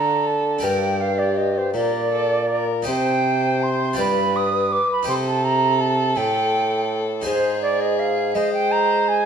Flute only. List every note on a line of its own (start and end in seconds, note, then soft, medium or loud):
0.00 0.28 A#5 medium
0.27 0.65 A5 medium
0.64 1.02 G5 medium
1.00 1.20 F5 medium
1.18 1.38 D5 medium
1.37 1.59 D#5 medium
1.58 1.74 C5 medium
1.75 2.65 D5 medium
2.89 3.64 G5 medium
3.62 3.99 C6 medium
3.99 4.37 B5 medium
4.36 4.73 D#6 medium
4.72 4.89 D6 medium
4.92 5.08 B5 medium
5.08 5.14 C6 medium
5.28 5.46 A5 medium
5.44 5.82 A#5 medium
5.80 6.18 A5 medium
6.17 6.99 G5 medium
7.26 7.60 C5 medium
7.62 7.82 D5 medium
7.81 8.01 D#5 medium
7.99 8.36 F5 medium
8.34 8.53 D#5 medium
8.53 8.73 G5 medium
8.71 9.10 A#5 medium
9.08 9.26 G#5 medium